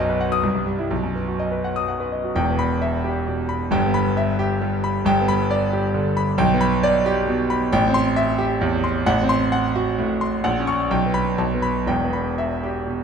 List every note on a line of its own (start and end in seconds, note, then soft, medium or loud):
0.00 0.40 B1 loud
0.00 0.46 F#2 medium
0.00 0.46 B3 medium
0.00 0.45 F#4 medium
0.00 0.16 D#5 medium
0.09 0.27 B4 medium
0.21 0.39 F#5 medium
0.32 0.43 D#6 loud
0.43 0.89 C2 medium
0.55 0.74 G2 medium
0.67 0.86 G3 medium
0.79 0.91 E4 medium
0.91 2.31 B1 medium
1.03 1.23 F#2 medium
1.15 1.35 B3 medium
1.28 1.47 F#4 medium
1.39 1.59 D#5 medium
1.52 1.71 B4 medium
1.64 1.83 F#5 medium
1.76 1.95 D#6 medium
1.88 2.07 F#5 medium
2.00 2.19 B4 medium
2.12 2.31 D#5 medium
2.24 2.36 F#4 medium
2.35 3.68 E1 medium
2.35 3.68 E2 medium
2.35 2.72 G5 medium
2.51 2.75 B3 medium
2.59 2.95 B5 loud
2.82 3.18 E5 medium
3.04 3.40 G4 medium
3.27 3.63 B2 medium
3.49 3.72 B5 medium
3.71 5.02 G1 loud
3.71 5.03 G2 loud
3.71 4.08 G5 loud
3.87 4.11 B3 medium
3.94 4.30 B5 loud
4.17 4.53 E5 medium
4.39 4.75 G4 loud
4.61 4.98 G3 medium
4.84 5.07 B5 loud
5.05 6.33 G1 loud
5.05 6.34 G2 loud
5.05 5.42 G5 loud
5.21 5.45 B3 medium
5.28 5.64 B5 loud
5.51 5.86 D5 loud
5.73 6.08 G4 medium
5.94 6.29 D3 medium
6.17 6.39 B5 loud
6.38 7.68 B1 loud
6.38 6.74 G5 loud
6.54 6.77 B3 medium
6.61 6.97 B5 loud
6.83 7.19 D5 loud
7.06 7.41 G4 loud
7.28 7.64 B2 loud
7.50 7.73 B5 loud
7.72 9.03 A1 loud
7.72 8.08 G5 loud
7.88 8.11 C4 medium
7.94 8.30 C6 loud
8.16 8.52 E5 loud
8.39 8.75 G4 loud
8.61 8.97 E2 loud
8.84 9.07 C6 medium
9.06 10.40 A1 loud
9.06 9.43 F#5 loud
9.22 9.46 C4 loud
9.29 9.66 C6 loud
9.52 9.89 F#5 loud
9.76 10.12 F#4 loud
9.98 10.35 A2 medium
10.21 10.44 C6 loud
10.44 10.89 A#1 loud
10.44 10.81 F#5 loud
10.60 10.84 C#4 medium
10.67 10.90 C#6 loud
10.91 11.37 B1 loud
10.91 11.29 G5 medium
11.06 11.32 B3 medium
11.14 11.38 B5 loud
11.38 11.86 B1 loud
11.38 11.77 A5 medium
11.54 11.81 B3 medium
11.62 11.87 B5 loud
11.86 13.04 E1 medium
11.86 13.04 E2 medium
11.86 12.28 G5 medium
12.04 12.31 B3 medium
12.13 12.53 B5 medium
12.38 12.78 E5 medium
12.63 13.02 G4 medium
12.87 13.04 B2 medium